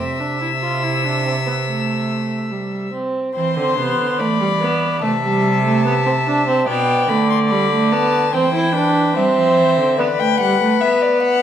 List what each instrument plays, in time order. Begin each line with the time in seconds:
0.00 cello C3, viola C4, violin E5 E6
0.20 viola D4
0.41 viola E4
0.62 viola F4
0.83 viola E4
1.05 viola D4
1.26 viola C4
1.47 viola B3
1.67 viola A3
2.51 viola G3
2.94 viola C4
3.35 cello E3, viola C4, violin C5 C6
3.56 cello D3, viola C4
3.77 cello C3, viola B3
3.98 cello D3
4.19 cello E3, viola A3, violin D5 B5
4.41 viola G3
4.61 viola B3
5.02 cello C3, viola A3, violin E5 A5
5.24 viola G3
5.65 viola A3
5.85 viola B3, violin E5
6.06 viola C4
6.27 viola D4
6.48 viola C4
6.67 cello B2, viola B3, violin D5 G5
7.09 cello D3, viola A3, violin B5
7.30 violin C6
7.50 viola G3, violin B5
7.72 viola A3
7.92 viola B3, violin A5
8.33 cello E3, viola C4, violin C5 G5
8.54 viola E4
8.74 viola D4, violin B4
9.16 cello G3, viola C4, violin C5 E5
9.36 cello F3
9.57 cello E3
9.77 cello D3
9.99 viola B3, violin B4 D5
10.20 viola A3, violin G5
10.40 viola G3, violin F#5
10.61 viola A3
10.81 viola B3, violin E5
11.02 violin D5
11.23 violin F#5